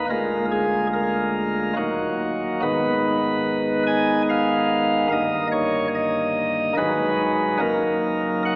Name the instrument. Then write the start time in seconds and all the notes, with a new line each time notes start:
pipe organ
0.10 D1 D2 G#3 A#3 F4 A#4
0.51 G#4
0.93 A#4
1.76 D#1 D#2 F#3 A#3 D#4 F#4
2.62 G#1 G#2 D#3 B3 D#4 B4
3.87 G#5
4.30 F5
5.12 G1 G2 D#3 A#3 D#4 D#5
5.52 C#5
5.95 D#5
6.77 G#1 G#2 F#3 G#3 D#4 B4
7.60 F#1 F#2 F#3 A#3 D#4 A#4
8.45 F#5